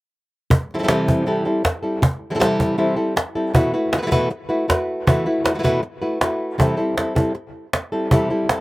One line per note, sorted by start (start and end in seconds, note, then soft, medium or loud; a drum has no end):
0.50 muted nylon-string guitar stroke medium
0.50 cajon bass loud
0.71 0.77 E3 medium
0.71 0.78 G3 medium
0.71 0.78 C4 medium
0.71 cajon slap soft
0.75 0.82 E3 medium
0.75 0.82 G3 medium
0.75 0.79 E4 medium
0.75 0.79 A4 medium
0.79 0.87 E3 medium
0.79 0.83 C4 medium
0.79 0.83 E4 medium
0.79 0.83 A4 medium
0.83 0.87 G3 medium
0.83 0.87 C4 medium
0.83 0.88 E4 medium
0.83 0.88 A4 medium
0.88 1.25 C3 medium
0.88 1.25 E3 medium
0.88 1.26 G3 medium
0.88 1.26 C4 loud
0.88 1.26 E4 medium
0.88 1.26 A4 medium
0.88 cajon slap loud
1.08 cajon bass medium
1.26 1.45 C3 medium
1.26 1.45 E3 medium
1.26 1.45 G3 medium
1.26 1.45 C4 medium
1.26 1.45 E4 medium
1.26 1.44 A4 medium
1.26 cajon slap soft
1.45 1.63 G3 soft
1.45 1.63 C4 soft
1.45 1.64 E4 medium
1.45 1.64 A4 medium
1.64 muted nylon-string guitar stroke medium
1.64 cajon bass medium
1.64 cajon slap loud
1.83 2.02 G3 soft
1.83 2.02 C4 soft
1.83 2.02 E4 soft
1.83 2.01 A4 soft
2.02 muted nylon-string guitar stroke medium
2.02 cajon bass medium
2.30 2.33 E3 medium
2.30 2.34 G3 medium
2.30 2.35 C4 medium
2.30 2.35 E4 medium
2.30 2.35 A4 medium
2.35 2.38 E3 medium
2.35 2.39 G3 medium
2.35 2.39 C4 medium
2.35 2.39 E4 medium
2.35 2.39 A4 medium
2.39 2.76 C3 medium
2.39 2.77 E3 medium
2.39 2.77 G3 medium
2.39 2.77 C4 medium
2.39 2.77 E4 medium
2.39 2.78 A4 loud
2.39 cajon slap medium
2.60 cajon bass medium
2.78 2.96 C3 medium
2.78 2.96 E3 medium
2.78 2.97 G3 medium
2.78 2.96 C4 medium
2.78 2.95 E4 medium
2.78 2.95 A4 medium
2.78 cajon slap soft
2.96 3.15 G3 soft
2.96 3.15 C4 soft
2.96 3.15 E4 soft
2.96 3.15 A4 medium
3.16 muted nylon-string guitar stroke medium
3.16 cajon slap medium
3.35 3.54 G3 soft
3.35 3.54 C4 soft
3.35 3.53 E4 medium
3.35 3.54 A4 medium
3.54 3.72 B2 medium
3.54 3.73 E3 medium
3.54 3.73 A3 medium
3.54 3.73 E4 medium
3.54 3.73 F#4 loud
3.54 3.72 B4 medium
3.54 cajon bass medium
3.74 3.92 A3 soft
3.74 3.92 E4 medium
3.74 3.92 F#4 medium
3.74 3.91 B4 medium
3.92 3.97 A3 soft
3.92 3.97 E4 medium
3.92 3.97 F#4 medium
3.92 3.97 B4 medium
3.92 cajon slap loud
3.97 4.01 E3 medium
3.97 4.01 A3 medium
3.97 4.01 E4 soft
3.97 4.02 F#4 medium
3.97 4.02 B4 medium
4.02 4.05 E3 medium
4.02 4.06 A3 medium
4.02 4.06 E4 medium
4.02 4.06 F#4 medium
4.02 4.07 B4 medium
4.06 4.10 E3 medium
4.06 4.11 A3 medium
4.06 4.10 E4 medium
4.06 4.11 F#4 medium
4.06 4.11 B4 medium
4.11 4.29 B2 medium
4.11 4.29 E3 medium
4.11 4.30 A3 medium
4.11 4.30 E4 medium
4.11 4.30 F#4 medium
4.11 4.30 B4 loud
4.11 cajon bass medium
4.30 muted nylon-string guitar stroke medium
4.49 4.67 A3 medium
4.49 4.67 E4 medium
4.49 4.68 F#4 medium
4.49 4.68 B4 medium
4.68 5.06 A3 medium
4.68 5.06 E4 medium
4.68 5.06 F#4 medium
4.68 5.07 B4 medium
4.68 cajon bass medium
4.68 cajon slap loud
5.07 5.25 B2 medium
5.07 5.25 E3 medium
5.07 5.25 A3 medium
5.07 5.25 E4 medium
5.07 5.25 F#4 medium
5.07 5.25 B4 medium
5.07 cajon bass medium
5.26 5.45 A3 soft
5.26 5.44 E4 medium
5.26 5.43 F#4 medium
5.26 5.43 B4 medium
5.26 cajon slap soft
5.44 5.54 A3 soft
5.44 5.54 E4 soft
5.44 5.54 F#4 medium
5.44 5.54 B4 medium
5.44 cajon slap loud
5.54 5.58 E3 medium
5.54 5.58 A3 soft
5.54 5.58 E4 medium
5.54 5.59 F#4 soft
5.54 5.59 B4 medium
5.59 5.62 E3 medium
5.59 5.63 A3 medium
5.59 5.63 E4 medium
5.59 5.63 F#4 medium
5.59 5.63 B4 medium
5.63 5.81 B2 medium
5.63 5.82 E3 medium
5.63 5.82 A3 medium
5.63 5.82 E4 medium
5.63 5.82 F#4 medium
5.63 5.82 B4 medium
5.63 cajon bass medium
5.83 muted nylon-string guitar stroke medium
6.02 6.20 A3 soft
6.02 6.20 E4 soft
6.02 6.20 F#4 soft
6.02 6.20 B4 medium
6.21 6.58 A3 medium
6.21 6.58 E4 medium
6.21 6.59 F#4 medium
6.21 6.59 B4 medium
6.21 cajon slap loud
6.58 6.77 C3 medium
6.58 6.77 E3 medium
6.58 6.77 G3 medium
6.58 6.77 C4 medium
6.58 6.76 E4 medium
6.58 6.76 A4 medium
6.58 cajon bass medium
6.77 6.96 G3 soft
6.77 6.96 C4 medium
6.77 6.96 E4 medium
6.77 6.96 A4 medium
6.77 cajon slap soft
6.97 7.15 G3 medium
6.97 7.15 C4 medium
6.97 7.15 E4 medium
6.97 7.14 A4 medium
6.97 cajon slap medium
7.15 7.34 G3 soft
7.15 7.34 C4 soft
7.15 7.34 E4 soft
7.15 7.34 A4 medium
7.15 cajon bass medium
7.35 muted nylon-string guitar stroke medium
7.73 cajon slap loud
7.92 8.11 G3 soft
7.92 8.11 C4 soft
7.92 8.11 E4 medium
7.92 8.10 A4 medium
8.11 8.29 C3 medium
8.11 8.29 E3 medium
8.11 8.30 G3 medium
8.11 8.30 C4 medium
8.11 8.29 E4 medium
8.11 8.29 A4 medium
8.11 cajon bass medium
8.30 8.48 G3 medium
8.30 8.49 C4 soft
8.30 8.49 E4 medium
8.30 8.48 A4 medium
8.30 cajon slap soft
8.49 8.61 G3 medium
8.49 8.61 C4 medium
8.49 8.61 E4 medium
8.49 8.61 A4 medium
8.49 cajon slap medium